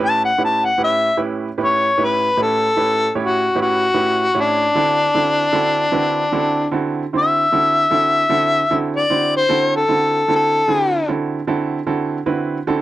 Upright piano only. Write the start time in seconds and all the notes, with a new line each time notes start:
0.00 A2 C#4 E4 G4 B4
0.38 A2 C#4 E4 G4 B4
0.78 A2 C#4 E4 G4 B4
1.17 A2 C#4 E4 G4 B4
1.58 A2 C#4 E4 G4 B4
1.98 A2 C#4 E4 G4 B4
2.37 A2 C#4 E4 G4 B4
2.76 A2 C#4 E4 G4 B4
3.15 A2 C#4 E4 G4 C#5
3.55 A2 C#4 E4 G4 B4
3.94 A2 C#4 E4 G4 B4
4.34 A2 C#4 E4 G4 C#5
4.75 D3 C4 E4 F#4 A4
5.14 D3 C4 E4 F#4 A4
5.52 D3 C4 E4 F#4 A4
5.92 D3 C4 E4 F#4 B4
6.32 D3 C4 E4 F#4 A4
6.71 D3 C4 E4 F#4 A4
7.13 D3 C4 E4 F#4 C5
7.52 D3 C4 E4 F#4 A4
7.91 D3 C4 E4 F#4 A4
8.29 D3 C4 E4 F#4 A4
8.71 D3 C4 E4 F#4 A4
9.10 D3 C4 E4 F#4 C5
9.49 D3 C4 E4 F#4 A4
9.88 D3 C4 E4 F#4 A4
10.28 D3 C4 E4 F#4 A4
10.68 D3 C4 E4 F#4 A4
11.08 D3 C4 E4 F#4 A4
11.47 D3 C4 E4 F#4 A4
11.87 D3 C4 E4 F#4 A4
12.26 D3 C4 E4 F#4 B4
12.67 D3 C4 E4 F#4 A4